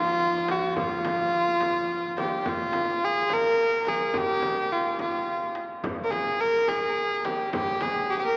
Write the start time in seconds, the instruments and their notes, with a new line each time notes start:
Already playing: cello F2, kamancheh F4
0.07 tombak ka
0.21 tombak ka
0.48 kamancheh F#4, tombak tek, frame drum
0.76 kamancheh F4, frame drum, tombak dum
1.05 tombak tek, frame drum
1.33 tombak ka
1.60 tombak tek, frame drum
1.75 tombak ka
1.89 tombak ka
2.17 kamancheh G4, tombak tek, frame drum
2.46 kamancheh F4, tombak dum, frame drum
2.73 tombak tek, frame drum
3.05 kamancheh G#4
3.29 kamancheh A#4, tombak tek, frame drum
3.43 tombak ka
3.57 tombak ka
3.85 kamancheh G#4, tombak tek, frame drum
4.14 kamancheh G4, tombak dum, frame drum
4.42 tombak tek, frame drum
4.73 kamancheh F4
4.99 kamancheh F4, tombak tek, frame drum
5.14 tombak ka
5.28 tombak ka
5.55 tombak tek
5.84 frame drum, tombak dum
6.04 kamancheh A#4
6.11 kamancheh G#4, tombak tek, frame drum
6.41 kamancheh A#4
6.68 kamancheh G#4, tombak tek, frame drum
6.83 tombak ka
6.96 tombak ka
7.25 kamancheh G4, tombak tek, frame drum
7.53 kamancheh G4, tombak dum, frame drum
7.81 kamancheh G#4, tombak tek, frame drum
8.09 kamancheh G4 G#4, tombak ka
8.19 kamancheh G4
8.25 kamancheh A#4